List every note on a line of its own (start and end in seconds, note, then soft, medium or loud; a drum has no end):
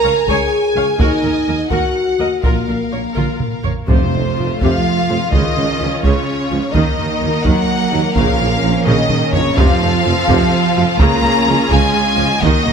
0.00 0.12 C#2 soft
0.00 0.27 A#4 medium
0.00 1.67 G#5 medium
0.00 0.26 A#5 medium
0.04 0.12 C#2 soft
0.04 0.13 C#5 soft
0.04 0.13 F5 soft
0.27 0.35 C#2 medium
0.27 0.36 C#2 medium
0.27 0.99 G#4 medium
0.27 0.51 G#4 medium
0.27 0.50 C#5 medium
0.27 0.99 G#5 medium
0.27 taiko medium
0.75 0.83 C#2 soft
0.75 0.84 C#2 soft
0.75 0.85 C#5 medium
0.75 0.84 F5 soft
0.99 1.07 D#2 medium
0.99 1.08 D#2 medium
0.99 1.69 D#4 medium
0.99 1.21 F#4 medium
0.99 1.21 A#4 medium
0.99 1.70 D#5 medium
0.99 taiko medium
1.23 1.31 D#2 soft
1.23 1.32 D#2 soft
1.23 1.33 A#4 soft
1.48 1.56 D#2 soft
1.48 1.57 A#4 soft
1.48 1.57 D#5 soft
1.70 1.79 D#2 soft
1.70 2.42 F#4 medium
1.70 1.93 F#4 soft
1.70 1.93 A#4 soft
1.70 2.42 F#5 medium
1.70 2.44 F#5 soft
1.70 taiko medium
2.19 2.27 D#2 soft
2.19 2.28 D#2 soft
2.19 2.28 A#4 soft
2.19 2.28 D#5 soft
2.43 2.52 A#1 soft
2.43 2.51 A#2 soft
2.43 3.62 A#3 medium
2.43 2.66 F4 soft
2.43 2.66 A#4 soft
2.43 3.62 A#4 soft
2.43 3.67 F5 soft
2.43 taiko medium
2.68 2.77 A#1 soft
2.68 2.76 A#2 soft
2.68 2.77 A#4 soft
2.92 3.01 A#1 soft
2.92 3.01 A#2 soft
2.92 3.01 A#4 soft
2.92 3.00 C#5 soft
3.16 3.24 A#1 soft
3.16 3.24 A#2 soft
3.16 3.38 F4 soft
3.16 3.38 A#4 soft
3.16 taiko mid medium
3.40 taiko low-mid medium
3.64 3.72 A#1 soft
3.64 3.72 A#2 soft
3.64 3.72 A#4 soft
3.64 3.72 C#5 soft
3.64 taiko low medium
3.88 3.99 F1 medium
3.88 3.96 F2 medium
3.88 4.58 F2 medium
3.88 4.57 C3 soft
3.88 4.11 C3 medium
3.88 5.29 A3 soft
3.88 6.71 F4 soft
3.88 4.57 C5 medium
3.88 taiko medium
4.13 4.23 F1 soft
4.13 4.21 F2 soft
4.13 4.21 C3 soft
4.38 4.48 F1 soft
4.38 4.46 F2 soft
4.38 4.46 F3 soft
4.38 4.46 A3 soft
4.38 4.46 F4 soft
4.61 4.72 F1 medium
4.61 4.70 F2 soft
4.61 4.84 C3 medium
4.61 5.33 F3 medium
4.61 5.33 F5 medium
4.61 taiko medium
5.09 5.19 F1 soft
5.09 5.17 F2 soft
5.09 5.18 F3 medium
5.09 5.18 A3 medium
5.09 5.18 F4 soft
5.32 5.41 C#2 medium
5.32 5.42 C#2 medium
5.32 5.56 C#3 medium
5.32 6.03 D#3 soft
5.32 6.73 C#4 medium
5.32 6.02 D#5 medium
5.32 taiko medium
5.56 5.65 C#2 soft
5.56 5.64 C#2 soft
5.56 5.66 C#3 soft
5.79 5.89 C#2 soft
5.79 5.89 F3 soft
5.79 5.88 G#3 medium
5.79 5.89 F4 soft
6.03 6.13 C#2 medium
6.03 6.12 C#2 medium
6.03 6.74 C#3 medium
6.03 6.26 C#3 medium
6.03 6.73 C#5 medium
6.03 taiko medium
6.50 6.59 C#2 soft
6.50 6.59 F3 medium
6.50 6.60 G#3 soft
6.50 6.60 F4 soft
6.73 6.82 D#2 medium
6.73 6.83 D#2 medium
6.73 7.45 D#3 medium
6.73 6.97 D#3 medium
6.73 9.54 A#3 medium
6.73 8.13 D#4 medium
6.73 9.57 A#4 medium
6.73 7.45 D#5 medium
6.73 taiko medium
6.97 7.07 D#2 soft
6.97 7.06 D#2 soft
6.97 7.06 D#3 soft
7.21 7.31 D#2 soft
7.21 7.29 D#2 soft
7.21 7.29 F#3 soft
7.21 7.30 A#3 medium
7.21 7.30 F#4 medium
7.44 7.53 D#2 medium
7.44 7.67 D#3 medium
7.44 8.16 F#3 medium
7.44 8.15 F#5 medium
7.44 taiko medium
7.91 8.01 D#2 soft
7.91 8.00 F#3 medium
7.91 8.00 A#3 medium
7.91 8.00 F#4 medium
8.15 8.25 A#1 medium
8.15 8.24 A#1 medium
8.15 8.83 A#2 medium
8.15 8.38 C#3 medium
8.15 8.85 F3 medium
8.15 9.57 C#4 medium
8.15 8.85 F5 medium
8.15 taiko medium
8.38 8.48 A#1 soft
8.38 8.47 A#1 soft
8.38 8.49 C#3 medium
8.62 8.72 A#1 soft
8.62 8.71 A#1 soft
8.62 8.72 F3 soft
8.62 8.72 C#4 medium
8.62 8.71 F4 medium
8.85 8.95 A#1 medium
8.85 8.94 A#1 medium
8.85 9.09 C#3 medium
8.85 9.34 D#3 medium
8.85 9.32 D#5 medium
8.85 taiko low-mid medium
9.09 taiko low-mid medium
9.32 9.42 A#1 soft
9.32 9.43 A#1 soft
9.32 9.57 C#3 medium
9.32 9.42 F3 medium
9.32 9.42 C#4 medium
9.32 9.42 F4 medium
9.32 9.57 C#5 medium
9.32 taiko low medium
9.56 9.66 F1 medium
9.56 9.65 F2 medium
9.56 9.80 C3 medium
9.56 11.00 F3 medium
9.56 10.97 C4 medium
9.56 12.38 F4 medium
9.56 10.97 A4 medium
9.56 10.99 F5 medium
9.56 taiko medium
9.80 9.89 F1 medium
9.80 9.89 F2 soft
9.80 9.90 C3 soft
10.04 10.13 F1 medium
10.04 10.12 F2 soft
10.04 10.13 F3 soft
10.04 10.13 A3 medium
10.04 10.13 F4 medium
10.27 10.37 F1 medium
10.27 10.35 F2 medium
10.27 10.50 C3 medium
10.27 taiko medium
10.74 10.86 F1 soft
10.74 10.84 F2 medium
10.74 10.84 F3 medium
10.74 10.83 A3 medium
10.74 10.84 F4 medium
10.99 11.07 C#2 medium
10.99 11.09 C#2 medium
10.99 11.22 C#3 medium
10.99 11.69 A#3 medium
10.99 12.39 C#4 medium
10.99 12.42 G#4 medium
10.99 11.69 A#5 loud
10.99 taiko medium
11.22 11.30 C#2 medium
11.22 11.32 C#2 medium
11.22 11.32 C#3 medium
11.46 11.56 C#2 medium
11.46 11.54 C#2 soft
11.46 11.55 F3 medium
11.46 11.55 G#3 medium
11.46 11.55 F4 medium
11.70 11.79 C#2 medium
11.70 11.93 C#3 medium
11.70 12.41 G#3 medium
11.70 12.43 G#5 medium
11.70 taiko medium
12.17 12.25 C#2 medium
12.17 12.28 C#2 medium
12.17 12.26 F3 medium
12.17 12.26 G#3 medium
12.17 12.25 F4 medium
12.41 12.49 D#2 medium
12.41 12.51 D#2 medium
12.41 12.73 D#3 medium
12.41 12.65 D#3 medium
12.41 12.73 A#3 medium
12.41 12.73 D#4 medium
12.41 12.73 F#4 medium
12.41 12.73 D#5 medium
12.41 taiko medium
12.65 12.73 D#2 soft
12.65 12.73 D#2 medium
12.65 12.73 D#3 soft
12.65 taiko low-mid soft